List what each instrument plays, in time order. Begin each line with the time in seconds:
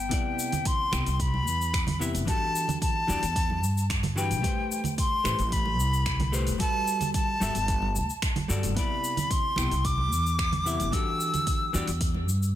Already playing: synth texture B3 B6, flute G5
0.09 hollow-body jazz guitar C3 B3 E4, kick, open hi-hat, high conga, shaker
0.13 hollow-body jazz guitar D5
0.39 shaker
0.52 open hi-hat, high conga, low conga, shaker
0.65 flute C6, kick, open hi-hat, shaker
0.91 upright bass C2, hollow-body jazz guitar C3 B3 E4 G5, finger snap, high conga, shaker
1.06 upright bass C2, open hi-hat, shaker
1.14 flute C6
1.20 flute B5, kick, open hi-hat, shaker
1.34 high conga
1.47 upright bass E2, shaker
1.62 shaker
1.74 finger snap, kick, open hi-hat, shaker
1.87 open hi-hat, high conga, low conga
1.99 hollow-body jazz guitar C3 B3 E4 E5, shaker
2.14 upright bass G1, open hi-hat, shaker
2.25 hollow-body jazz guitar E3 D4 F#4 G4, flute A5, kick, open hi-hat, high conga, shaker
2.30 hollow-body jazz guitar A4
2.56 shaker
2.68 open hi-hat, high conga, low conga, shaker
2.82 flute A5, kick, open hi-hat, shaker
3.07 upright bass E2, hollow-body jazz guitar E3 D4 F#4 G4 D5, high conga, shaker
3.23 upright bass E2, open hi-hat, shaker
3.36 kick, open hi-hat, shaker
3.50 high conga
3.63 upright bass G2, shaker
3.78 shaker
3.90 finger snap, kick, open hi-hat, shaker
4.03 open hi-hat, high conga, low conga
4.16 hollow-body jazz guitar E3 D4 F#4 G4 B4, flute G5, shaker
4.31 upright bass B1, open hi-hat, shaker
4.41 hollow-body jazz guitar A3 G4 B4, kick, open hi-hat, high conga, shaker
4.46 hollow-body jazz guitar C5
4.72 shaker
4.84 open hi-hat, high conga, low conga, shaker
4.98 flute C6, kick, open hi-hat, shaker
5.24 upright bass A1, hollow-body jazz guitar A3 G4 B4 C5, finger snap, high conga, shaker
5.39 upright bass A1, open hi-hat, shaker
5.52 flute B5, kick, open hi-hat, shaker
5.66 high conga
5.79 upright bass C2, shaker
5.94 shaker
6.06 finger snap, kick, open hi-hat, shaker
6.20 open hi-hat, high conga, low conga
6.32 hollow-body jazz guitar A3 G4 B4 C5, shaker
6.47 upright bass E1, open hi-hat, shaker
6.58 hollow-body jazz guitar G3 F#4 A4, flute A5, kick, open hi-hat, high conga, shaker
6.62 hollow-body jazz guitar B4
6.88 shaker
7.00 open hi-hat, high conga, low conga, shaker
7.14 flute A5, kick, open hi-hat, shaker
7.40 upright bass G1, hollow-body jazz guitar G3 F#4 A4 E5, high conga, shaker
7.55 upright bass G1, open hi-hat, shaker
7.68 kick, open hi-hat, shaker
7.82 high conga
7.95 upright bass D2, shaker
8.10 shaker
8.22 finger snap, kick, open hi-hat, shaker
8.36 open hi-hat, high conga, low conga
8.48 upright bass G2, hollow-body jazz guitar G3 F#4 A4 D5, shaker
8.63 upright bass G1, open hi-hat, shaker
8.74 hollow-body jazz guitar C3 B3 E4, flute B5, kick, open hi-hat, high conga, shaker
8.79 hollow-body jazz guitar D5
9.04 shaker
9.17 open hi-hat, high conga, low conga, shaker
9.31 flute C6, kick, open hi-hat, shaker
9.56 upright bass C2, hollow-body jazz guitar C3 B3 E4 G5, finger snap, high conga, shaker
9.71 upright bass C2, open hi-hat, shaker
9.85 flute D6, kick, open hi-hat, shaker
9.98 high conga
10.12 upright bass E2, shaker
10.26 shaker
10.39 finger snap, kick, open hi-hat, shaker
10.52 open hi-hat, high conga, low conga
10.65 hollow-body jazz guitar C3 B3 E4 E5, shaker
10.79 upright bass G1, open hi-hat, shaker
10.91 hollow-body jazz guitar E3 D4 F#4 G4, flute E6, kick, open hi-hat, high conga, shaker
10.95 hollow-body jazz guitar A4
11.21 shaker
11.34 open hi-hat, high conga, low conga, shaker
11.47 kick, open hi-hat, shaker
11.73 upright bass E2, hollow-body jazz guitar E3 D4 F#4 G4 D5, high conga, shaker
11.87 upright bass E2, open hi-hat, shaker
12.01 kick, open hi-hat, shaker
12.14 high conga
12.28 upright bass G2, shaker
12.43 shaker